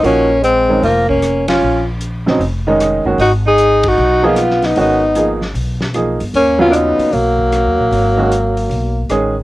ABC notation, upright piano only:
X:1
M:4/4
L:1/8
Q:"Swing" 1/4=152
K:Abdor
V:1 name="Upright piano"
[F,B,EG] z2 [E,A,DE] z4 | z3 [D,G,=CE] z [E,A,DE]2 [E,A,DG] | z4 z [F,B,EA] z2 | [E,A,DG] z [F,B,EA] z3 [F,B,EA] z |
z [D,G,CF]3 z4 | z [E,A,DG] z4 [E,A,DA] z |]